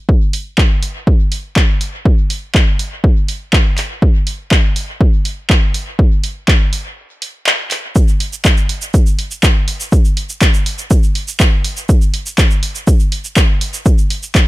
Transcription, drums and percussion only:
0.09 kick
0.33 open hi-hat
0.58 kick, clap
0.83 open hi-hat
1.07 kick
1.32 open hi-hat
1.56 kick, clap
1.81 open hi-hat
2.05 kick
2.30 open hi-hat
2.55 kick, clap
2.79 open hi-hat
3.04 kick
3.28 open hi-hat
3.53 kick, clap
3.78 clap, open hi-hat
4.02 kick
4.27 open hi-hat
4.51 kick, clap
4.76 open hi-hat
5.01 kick
5.25 open hi-hat
5.50 kick, clap
5.74 open hi-hat
5.99 kick
6.24 open hi-hat
6.48 kick, clap
6.73 open hi-hat
7.22 open hi-hat
7.47 clap
7.71 clap, open hi-hat
7.96 kick, shaker
8.08 shaker
8.20 open hi-hat
8.33 shaker
8.45 kick, clap, shaker
8.57 shaker
8.69 open hi-hat
8.82 shaker
8.94 kick, shaker
9.06 shaker
9.19 open hi-hat
9.31 shaker
9.43 kick, clap, shaker
9.68 open hi-hat
9.80 shaker
9.92 kick, shaker
10.05 shaker
10.17 open hi-hat
10.29 shaker
10.42 kick, clap, shaker
10.54 shaker
10.66 open hi-hat
10.78 shaker
10.91 kick, shaker
11.03 shaker
11.15 open hi-hat
11.28 shaker
11.40 kick, clap, shaker
11.64 open hi-hat
11.77 shaker
11.89 kick, shaker
12.01 shaker
12.14 open hi-hat
12.26 shaker
12.38 kick, clap, shaker
12.51 shaker
12.63 open hi-hat
12.75 shaker
12.87 kick, shaker
13.00 shaker
13.12 open hi-hat
13.24 shaker
13.37 kick, clap, shaker
13.61 open hi-hat
13.74 shaker
13.86 kick, shaker
13.98 shaker
14.10 open hi-hat
14.23 shaker
14.35 kick, clap, shaker

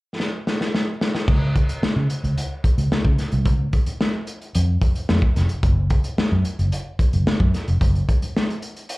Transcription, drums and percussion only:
0.20 snare
0.47 snare
0.61 snare
0.75 snare
1.01 snare
1.15 snare
1.28 kick, crash
1.56 kick, closed hi-hat
1.69 closed hi-hat
1.83 snare
2.10 closed hi-hat
2.24 closed hi-hat
2.38 closed hi-hat
2.64 kick, closed hi-hat
2.78 closed hi-hat
2.92 snare
3.05 kick
3.18 snare, closed hi-hat
3.32 closed hi-hat
3.45 kick, closed hi-hat
3.73 kick, closed hi-hat
3.86 closed hi-hat
4.01 snare
4.27 closed hi-hat
4.42 closed hi-hat
4.55 closed hi-hat
4.82 kick, closed hi-hat
4.95 closed hi-hat
5.09 snare
5.22 kick
5.36 snare, closed hi-hat
5.49 closed hi-hat
5.63 kick, closed hi-hat
5.90 kick, closed hi-hat
6.04 closed hi-hat
6.18 snare
6.45 closed hi-hat
6.59 closed hi-hat
6.72 closed hi-hat
6.99 kick, closed hi-hat
7.13 closed hi-hat
7.27 snare
7.40 kick
7.54 snare, closed hi-hat
7.68 closed hi-hat
7.81 kick, closed hi-hat
7.95 closed hi-hat
8.09 kick, closed hi-hat
8.22 closed hi-hat
8.37 snare
8.50 closed hi-hat
8.62 closed hi-hat
8.76 closed hi-hat
8.89 closed hi-hat

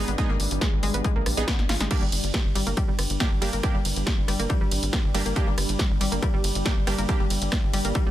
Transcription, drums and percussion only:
0.08 closed hi-hat
0.18 kick, closed hi-hat
0.40 open hi-hat
0.51 closed hi-hat
0.61 kick, cross-stick, snare, closed hi-hat
0.83 open hi-hat
0.94 closed hi-hat
1.04 kick, closed hi-hat
1.26 cross-stick, open hi-hat
1.37 closed hi-hat
1.48 kick, snare, closed hi-hat
1.59 snare
1.69 snare, open hi-hat
1.80 snare, closed hi-hat
1.91 kick, closed hi-hat, ride, crash
2.12 open hi-hat, ride
2.24 closed hi-hat
2.34 kick, cross-stick, snare, closed hi-hat, ride
2.55 open hi-hat, ride
2.67 closed hi-hat
2.77 kick, closed hi-hat, ride
2.99 cross-stick, open hi-hat, ride
3.10 closed hi-hat
3.20 kick, snare, closed hi-hat, ride
3.42 open hi-hat, ride
3.53 closed hi-hat
3.63 kick, cross-stick, closed hi-hat, ride
3.85 open hi-hat, ride
3.96 closed hi-hat
4.07 kick, snare, closed hi-hat, ride
4.28 cross-stick, open hi-hat, ride
4.40 closed hi-hat
4.50 kick, closed hi-hat, ride
4.71 open hi-hat, ride
4.83 closed hi-hat
4.93 kick, cross-stick, snare, closed hi-hat, ride
5.15 open hi-hat, ride
5.26 closed hi-hat
5.36 kick, closed hi-hat, ride
5.58 cross-stick, open hi-hat, ride
5.69 closed hi-hat
5.79 kick, snare, closed hi-hat, ride
6.01 open hi-hat, ride
6.12 closed hi-hat
6.22 kick, cross-stick, closed hi-hat, ride
6.44 open hi-hat, ride
6.55 closed hi-hat
6.66 kick, snare, closed hi-hat, ride
6.87 cross-stick, open hi-hat, ride
6.99 closed hi-hat
7.09 kick, closed hi-hat, ride
7.30 open hi-hat, ride
7.42 closed hi-hat
7.52 kick, cross-stick, snare, closed hi-hat, ride
7.73 open hi-hat, ride
7.85 closed hi-hat
7.95 kick, closed hi-hat, ride

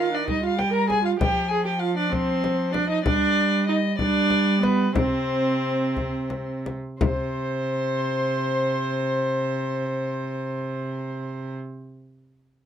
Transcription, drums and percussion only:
0.28 frame drum
0.59 frame drum
0.90 frame drum
1.21 frame drum
2.13 frame drum
2.44 frame drum
2.74 frame drum
3.06 frame drum
3.99 frame drum
4.30 frame drum
4.63 frame drum
4.96 frame drum
5.97 frame drum
6.30 frame drum
6.66 frame drum
7.01 frame drum

